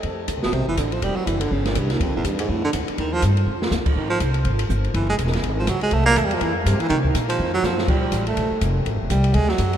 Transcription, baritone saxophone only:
X:1
M:4/4
L:1/8
Q:"Swing" 1/4=245
K:Dm
V:1 name="Baritone saxophone" clef=bass
z3 =B,, C, E, D, F, | G, ^F, E, D, _D, B,, G,, _E,, | F,, E,, G,, _A,, =A,, D, z2 | _E, F, z6 |
_E, F, z6 | E, _A, z3 F, _G, A, | A, B, (3A, G, F, E, G,, C, E, | _E, z2 F,2 _G, F,2 |
[K:Bb] G,3 A,3 z2 | z2 G,2 _A, ^F,3 |]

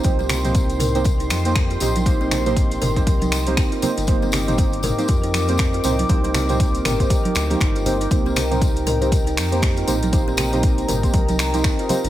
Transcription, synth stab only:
X:1
M:4/4
L:1/16
Q:"Swing 16ths" 1/4=119
K:Cm
V:1 name="Synth stab"
[B,CEGc]3 [B,CEGc]4 [B,CEGc] z3 [B,CEGc]3 [B,CEGc] z | [B,CEGc]3 [B,CEGc]4 [B,CEGc] z3 [B,CEGc]3 [B,CEGc] z | [B,CEGc]3 [B,CEGc]4 [B,CEGc] z3 [B,CEGc]3 [B,CEGc] z | [B,CEGc]3 [B,CEGc]4 [B,CEGc] z3 [B,CEGc]3 [B,CEGc] z |
[B,CEGc]3 [B,CEGc]4 [B,CEGc] z3 [B,CEGc]3 [B,CEGc] z | [B,CEGc]3 [B,CEGc]4 [B,CEGc] z3 [B,CEGc]3 [B,CEGc] z |]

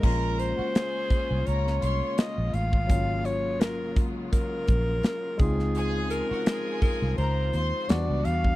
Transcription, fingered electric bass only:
X:1
M:4/4
L:1/16
Q:"Swing 16ths" 1/4=84
K:Bbm
V:1 name="Fingered electric bass" clef=bass
B,,,3 z4 C,, D,,2 C,, z2 B,,, =A,,,2 | A,,,6- A,,, z3 B,,,2 z2 D,,2- | D,,3 z4 C,, D,,2 E,, z =E,, D,, E,,2 |]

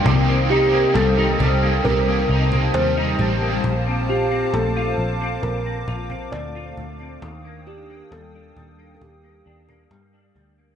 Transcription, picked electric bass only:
X:1
M:4/4
L:1/8
Q:1/4=67
K:Cdor
V:1 name="Picked electric bass" clef=bass
C,,2 C,, C,, C,, C,, E,, A,,, | B,,,2 B,,, B,,, B,,, B,,, D,, D,, | E,,2 E,, E,, E,, E,, G,, D,, |]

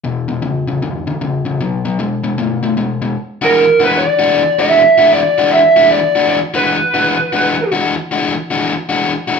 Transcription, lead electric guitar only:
X:1
M:4/4
L:1/8
Q:"Swing" 1/4=153
K:Emix
V:1 name="Lead electric guitar"
z8 | z8 | z ^A2 B d3 e- | e2 d2 e2 d2 |
d B6 z | z8 |]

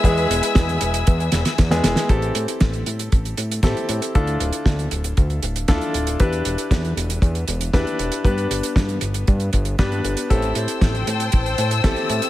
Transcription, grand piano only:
X:1
M:4/4
L:1/16
Q:1/4=117
K:Am
V:1 name="Grand piano"
[^G,B,E^G]12 z [G,B,EG]3 | [CEGA]12 [CEGA]4 | [DEFA]12 [DEFA]4 | [DEGB]12 [DEGB]4 |
[B,DGB]12 [B,DGB]4 | [CEGA]12 [CEGA]4 |]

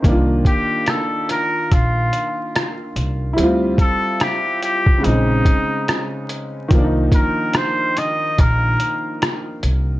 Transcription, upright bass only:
X:1
M:4/4
L:1/8
Q:"Swing 16ths" 1/4=72
K:Dphr
V:1 name="Upright bass" clef=bass
C,, z3 B,,, z2 C,, | D,, z3 B,,, z3 | C,, z3 B,,, z2 C,, |]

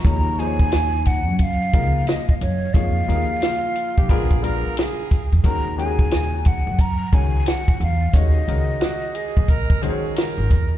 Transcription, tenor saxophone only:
X:1
M:4/4
L:1/16
Q:"Swing 16ths" 1/4=89
K:Ebm
V:1 name="Tenor saxophone"
z16 | z4 F3 =G A2 B2 A3 z | z16 | z4 G2 A2 B2 A2 B4 |]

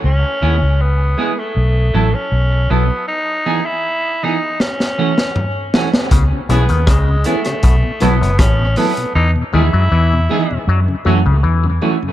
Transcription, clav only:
X:1
M:4/4
L:1/16
Q:1/4=79
K:C#m
V:1 name="Clav" clef=bass
z16 | z16 | C, z B,, D, C,2 z2 B,, z B,, F,, A,,2 z2 | E, z D, F, E,2 z2 F, z F, C, E,2 z2 |]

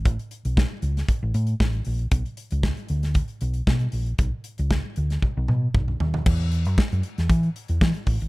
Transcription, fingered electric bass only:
X:1
M:4/4
L:1/16
Q:1/4=116
K:Bdor
V:1 name="Fingered electric bass" clef=bass
A,,, z2 B,,,2 z C,,2 z A,,, A,,2 A,,,2 _B,,,2 | B,,, z2 C,,2 z D,,3 z B,,,2 B,,2 _B,,,2 | B,,, z2 C,,2 z D,,2 z B,,, B,,2 B,,,2 ^D,,2 | E,,3 F,, z F,, z E,, E,2 z E,, E, z A,,, G,,, |]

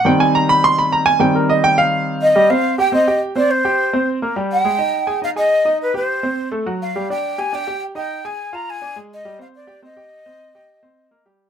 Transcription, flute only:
X:1
M:4/4
L:1/8
Q:1/4=209
K:Eb
V:1 name="Flute"
z8 | z6 z e- | e f2 g e2 z d | c4 z3 g- |
g4 f e3 | =B c4 z2 f- | f g2 a g2 z g- | g a2 b a2 z e- |
e f d2 e4- | e6 z2 |]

